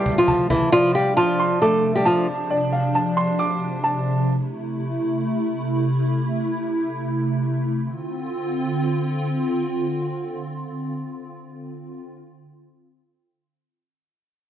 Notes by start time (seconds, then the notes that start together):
Already playing: C3 G3 A3 G4 C5 E5 A5 C6 C7
0.06 cajon bass
0.18 F3 F4
0.28 A5, cajon bass
0.50 E3 E4, cajon bass
0.72 C3 F3 D4 F4 D5
0.95 G3 G4 F5
1.17 F3 F4 A5
1.40 C6
1.62 A3 A4 D6
1.95 G3 G4
2.05 F3 F4 A5
2.50 D5
2.73 F5
2.95 A5
3.17 C6
3.39 D6
3.84 A5
4.28 A3 E4
7.83 D3 C4 F4